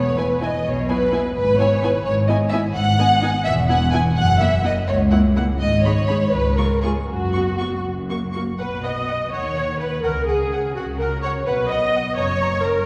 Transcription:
Already playing: double bass section E1, cello section E2, violin section C#5
0.16 viola section B3 E4, violin section B4 G#5
0.41 viola section B3 E4, violin section D#5 G#5
0.66 double bass section B1, cello section B2, violin section C#5
0.88 viola section B3 E4, violin section B4 G#5
1.12 viola section B3 E4, violin section G#5
1.35 double bass section G#1, cello section G#2, violin section B4
1.58 viola section B3 E4, violin section C#5 G#5
1.81 viola section B3 E4, violin section B4 G#5
2.04 double bass section G#1, cello section G#2, violin section C#5
2.28 viola section B3 E4, violin section D#5 G#5
2.49 viola section B3 E4, violin section E5 G#5
2.73 double bass section G#1, cello section G#2, violin section F#5
2.99 viola section B3 D#4, violin section G#5
3.22 viola section B3 D#4, violin section G#5
3.44 double bass section E1, cello section E2, violin section E5
3.69 viola section B3 E4, violin section F#5 G#5
3.91 viola section B3 E4, violin section G#5
4.16 double bass section F#1, cello section F#2, violin section F#5
4.40 viola section A#3 E4, violin section E5 F#5
4.63 viola section A#3 E4, violin section D#5 F#5
4.88 double bass section C#2, cello section C#2, violin section C#5
5.11 viola section A#3 E4, violin section F#5
5.36 viola section A#3 E4, violin section F#5
5.60 double bass section G#1, cello section G#2, violin section D#5
5.85 viola section G#3 D#4, violin section C#5 B5
6.08 viola section G#3 D#4, violin section B5
6.32 double bass section C#2, cello section C#2, violin section B4
6.56 viola section G#3 F4, violin section A#4 C#6
6.82 viola section G#3 F4, violin section G#4 C#6
7.07 double bass section F#1, cello section F#2, violin section F#4
7.33 viola section B3 F#4, violin section C#6
7.59 viola section B3 F#4, violin section C#6
7.85 double bass section F#1, cello section F#2
8.10 viola section A#3 F#4, violin section C#6
8.34 viola section A#3 F#4, violin section C#6
8.58 double bass section B1, cello section B2, violin section B4 F#5, viola section B4
8.83 violin section D#5 F#5, viola section D#5
9.08 violin section F#5
9.32 double bass section D#2, cello section D#3, violin section C#5 F#5, viola section C#5
9.57 violin section F#5
9.80 viola section B4, violin section B4 F#5
10.03 double bass section C#2, cello section C#3, viola section A#4, violin section A#4 F#5
10.28 viola section G#4, violin section G#4 F#5
10.53 violin section F#5
10.76 double bass section C#2, cello section C#3, viola section F#4, violin section F#4 F#5
11.00 viola section A#4, violin section A#4 F#5
11.23 viola section C#5, violin section C#5 F#5
11.46 double bass section B1, cello section B2, viola section B4, violin section B4 F#5
11.69 viola section D#5, violin section D#5 F#5
11.95 violin section F#5
12.16 double bass section F#1, cello section F#2, viola section C#5, violin section C#5 A#5
12.41 violin section A#5
12.63 viola section A#4, violin section A#4 A#5

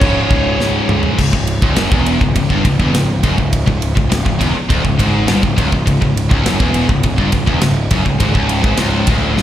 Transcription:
Already playing: lead electric guitar C#5
0.00 picked electric bass C#1, distorted electric guitar C#2 G#2 C#3, kick, crash
0.30 picked electric bass C#1, kick
0.58 picked electric bass C#1, snare
0.88 picked electric bass C#2, mid tom
1.03 floor tom
1.19 picked electric bass C#1, distorted electric guitar C#2, kick, crash
1.33 picked electric bass C#1, distorted electric guitar C#2, kick
1.47 ride
1.62 picked electric bass C#1, distorted electric guitar C#2, kick
1.75 picked electric bass F#1, distorted electric guitar F#2, snare, ride
1.91 picked electric bass E1, distorted electric guitar E2, kick
2.06 ride
2.21 picked electric bass C#1, distorted electric guitar C#2, kick
2.36 picked electric bass C#1, distorted electric guitar C#2, kick, ride
2.50 picked electric bass G1, distorted electric guitar G2, kick
2.65 picked electric bass C#1, distorted electric guitar C#2, kick, ride
2.79 picked electric bass E1, distorted electric guitar E2, kick
2.93 picked electric bass C#1, distorted electric guitar C#2, snare, ride
3.23 picked electric bass F#1, distorted electric guitar F#2, kick, ride
3.37 picked electric bass C#1, distorted electric guitar C#2, kick
3.53 kick, ride
3.67 picked electric bass C#1, distorted electric guitar C#2, kick
3.82 ride
3.96 picked electric bass C#1, distorted electric guitar C#2, kick
4.10 picked electric bass C#1, distorted electric guitar C#2, snare, ride
4.25 picked electric bass C#1, distorted electric guitar C#2, kick
4.40 picked electric bass E1, distorted electric guitar E2, kick, ride
4.55 muted picked electric bass stroke, muted distorted electric guitar stroke
4.69 picked electric bass D1, distorted electric guitar D2, kick, ride
4.84 picked electric bass C#1, distorted electric guitar C#2, kick
4.99 picked electric bass G#1, distorted electric guitar G#2, kick, ride
5.27 picked electric bass G1, distorted electric guitar G2, snare, ride
5.42 picked electric bass C#1, distorted electric guitar C#2, kick
5.56 picked electric bass C#1, distorted electric guitar C#2, kick, ride
5.72 picked electric bass C#1, distorted electric guitar C#2, kick
5.86 picked electric bass C#1, distorted electric guitar C#2, kick, ride
6.01 picked electric bass C#1, distorted electric guitar C#2, kick
6.17 ride
6.30 picked electric bass C#1, distorted electric guitar C#2, kick
6.45 picked electric bass F#1, distorted electric guitar F#2, snare, ride
6.60 picked electric bass E1, distorted electric guitar E2, kick
6.74 ride
6.89 picked electric bass C#1, distorted electric guitar C#2, kick
7.03 picked electric bass C#1, distorted electric guitar C#2, kick, ride
7.18 picked electric bass G1, distorted electric guitar G2, kick
7.32 picked electric bass C#1, distorted electric guitar C#2, kick, ride
7.47 picked electric bass E1, distorted electric guitar E2, kick
7.61 picked electric bass C#1, distorted electric guitar C#2, snare, ride
7.91 picked electric bass F#1, distorted electric guitar F#2, kick, ride
8.05 picked electric bass C#1, distorted electric guitar C#2, kick
8.20 picked electric bass G#1, distorted electric guitar G#2, kick, ride
8.34 picked electric bass C#1, distorted electric guitar C#2, kick
8.49 ride
8.63 picked electric bass G#1, distorted electric guitar G#2, kick
8.77 picked electric bass C#1, distorted electric guitar C#2, snare, ride
9.07 picked electric bass D1, distorted electric guitar D2, kick, ride
9.36 picked electric bass G1, distorted electric guitar G2, snare

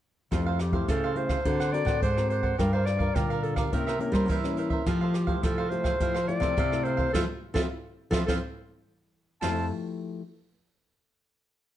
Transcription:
0.31 nylon-string guitar F2 F3 A3 E4 G4, cavaquinho E4 A4 C5 F5, kick, cross-stick, closed hi-hat
0.46 cavaquinho A4 C5 F5
0.59 clarinet G4, muted cavaquinho stroke, cross-stick, closed hi-hat
0.72 nylon-string guitar A3 E4 G4, cavaquinho A4 C5 F5, kick, closed hi-hat
0.88 nylon-string guitar C#3, cavaquinho E4 A4 C5 F5, clarinet A4, kick, cross-stick, closed hi-hat
1.04 cavaquinho A4 C5 F5
1.16 nylon-string guitar A3 E4 G4, clarinet C5, closed hi-hat
1.29 cavaquinho A4 C5 F5, kick, cross-stick, closed hi-hat
1.45 nylon-string guitar D3 C4 F#4 A#4, cavaquinho D4 C5 D5 F#5, kick, closed hi-hat
1.60 cavaquinho C5 D5 F#5, cross-stick, closed hi-hat
1.73 nylon-string guitar C4 F#4 A#4, clarinet D5, muted cavaquinho stroke, closed hi-hat
1.85 nylon-string guitar A2, cavaquinho C5 D5 F#5, kick, cross-stick, closed hi-hat
2.02 nylon-string guitar G#2, cavaquinho D4 C5 D5 F#5, clarinet C5, kick, closed hi-hat
2.17 nylon-string guitar C4 F#4 A#4, cross-stick, closed hi-hat
2.30 cavaquinho D4 C5 D5 F#5, clarinet C5, closed hi-hat
2.43 cavaquinho C5 D5 F#5, kick, closed hi-hat
2.58 nylon-string guitar G2 G3 D4 F4 A#4, cavaquinho G4 A#4 D5 F5, clarinet A#4, kick, cross-stick, closed hi-hat
2.73 cavaquinho A#4 D5 F5, clarinet C5
2.86 clarinet D5, muted cavaquinho stroke, cross-stick, closed hi-hat
2.99 nylon-string guitar D4 F4 A#4, cavaquinho A#4 D5 F5, kick, closed hi-hat
3.15 nylon-string guitar A#2 D3, cavaquinho G4 A#4 D5 F5, clarinet A#4, kick, cross-stick, closed hi-hat
3.30 cavaquinho A#4 D5 F5, closed hi-hat
3.43 nylon-string guitar D4 F4 A#4, clarinet A4, closed hi-hat
3.56 clarinet G4, cavaquinho A#4 D5 F5, kick, cross-stick
3.72 nylon-string guitar C3 A#3 C#4 E4, cavaquinho E4 A#4 C5 E5, clarinet A#4, kick, closed hi-hat
3.87 cavaquinho A#4 C5 E5, cross-stick
3.99 nylon-string guitar A#3 C#4 E4, clarinet A#4, muted cavaquinho stroke, closed hi-hat
4.12 nylon-string guitar G3, cavaquinho A#4 C5 E5, kick, cross-stick, closed hi-hat
4.29 nylon-string guitar E3 G3, cavaquinho E4 A#4 C5 E5, kick, closed hi-hat
4.44 nylon-string guitar A#3 C#4 E4, cross-stick, closed hi-hat
4.57 cavaquinho E4 A#4 C5 E5, closed hi-hat
4.70 cavaquinho A#4 C5 E5, kick, closed hi-hat
4.86 nylon-string guitar F3 A3 E4 G4, cavaquinho E4 A4 C5 F5, kick, cross-stick, closed hi-hat
5.01 cavaquinho A4 C5 F5
5.14 clarinet G4, muted cavaquinho stroke, cross-stick, closed hi-hat
5.27 nylon-string guitar A3 E4 G4, cavaquinho A4 C5 F5, kick, closed hi-hat
5.43 nylon-string guitar C3 F3, cavaquinho E4 A4 C5 F5, clarinet A4, kick, cross-stick, closed hi-hat
5.58 cavaquinho A4 C5 F5
5.70 nylon-string guitar A3 E4 G4, clarinet C5, closed hi-hat
5.84 cavaquinho A4 C5 F5, kick, cross-stick, closed hi-hat
6.00 nylon-string guitar F3 A3 E4 G4, cavaquinho E4 A4 C5 F5, kick, closed hi-hat
6.14 cavaquinho A4 C5 F5, cross-stick, closed hi-hat
6.28 nylon-string guitar A3 E4 G4, clarinet D5, muted cavaquinho stroke, closed hi-hat
6.40 nylon-string guitar C3, cavaquinho A4 C5 F5, kick, cross-stick, closed hi-hat
6.57 nylon-string guitar C3, cavaquinho E4 A4 C5 F5, kick, closed hi-hat
6.72 nylon-string guitar A3 E4 G4, cross-stick, closed hi-hat
6.84 cavaquinho E4 A4 C5 F5, clarinet C5, closed hi-hat
6.97 cavaquinho A4 C5 F5, kick, closed hi-hat
7.13 nylon-string guitar F3 C4 E4 F4, clarinet A4, cavaquinho C5 E5 F5, kick, snare
7.54 nylon-string guitar F3 C4 E4 F4, clarinet A4, cavaquinho C5 E5 F5, kick, snare
8.11 nylon-string guitar F3 C4 E4 F4, clarinet A4, cavaquinho C5 E5 F5, kick, snare
8.27 nylon-string guitar F3 C4 E4 F4, clarinet A4, cavaquinho C5 E5 F5, kick, snare
9.41 nylon-string guitar F2 F3 A3 E4 G4, cavaquinho E4 A4 C5 F5, clarinet A5, snare, open hi-hat

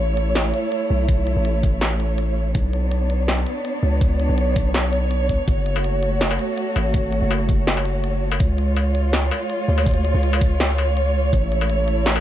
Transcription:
Already playing: 808-style bass A1, cello section A3 E4 C#5
0.17 closed hi-hat
0.35 snare, closed hi-hat
0.54 closed hi-hat
0.72 closed hi-hat
0.90 808-style bass B1
1.09 kick, closed hi-hat
1.27 closed hi-hat
1.37 808-style bass A1
1.45 closed hi-hat
1.63 kick, closed hi-hat
1.81 snare, closed hi-hat
2.00 closed hi-hat
2.18 closed hi-hat
2.55 808-style bass B1, cello section B3 D4 C#5, kick, closed hi-hat
2.73 closed hi-hat
2.92 closed hi-hat
3.10 closed hi-hat
3.28 snare, closed hi-hat
3.47 closed hi-hat
3.65 closed hi-hat
3.83 808-style bass C#2
4.01 kick, closed hi-hat
4.20 closed hi-hat
4.29 808-style bass B1
4.38 closed hi-hat
4.56 kick, closed hi-hat
4.74 snare, closed hi-hat
4.93 closed hi-hat
5.11 closed hi-hat
5.29 808-style bass C#2, kick, closed hi-hat
5.47 808-style bass F#1, cello section A3 F#4, kick, closed hi-hat
5.66 closed hi-hat
5.76 struck metal
5.84 closed hi-hat
6.03 closed hi-hat
6.21 snare, closed hi-hat
6.31 struck metal
6.39 closed hi-hat
6.58 closed hi-hat
6.76 808-style bass G#1, struck metal
6.94 kick, closed hi-hat
7.13 closed hi-hat
7.22 808-style bass F#1
7.31 closed hi-hat, struck metal
7.49 kick, closed hi-hat
7.67 snare, closed hi-hat
7.77 struck metal
7.85 closed hi-hat
8.04 closed hi-hat
8.32 struck metal
8.40 808-style bass C#2, cello section G#3 F4 C#5, kick, closed hi-hat
8.58 closed hi-hat
8.77 closed hi-hat, struck metal
8.95 closed hi-hat
9.13 snare, closed hi-hat
9.31 closed hi-hat, struck metal
9.50 closed hi-hat
9.68 808-style bass D2
9.78 struck metal
9.86 kick, closed hi-hat
9.89 closed hi-hat
9.91 closed hi-hat
9.94 closed hi-hat
10.05 closed hi-hat
10.14 808-style bass C#2
10.23 closed hi-hat
10.33 struck metal
10.41 kick, closed hi-hat
10.60 snare, closed hi-hat
10.78 closed hi-hat, struck metal
10.97 closed hi-hat
11.33 808-style bass A1, cello section A3 E4, kick, closed hi-hat
11.52 closed hi-hat
11.61 struck metal
11.70 closed hi-hat
11.88 closed hi-hat
12.06 snare, closed hi-hat
12.16 struck metal

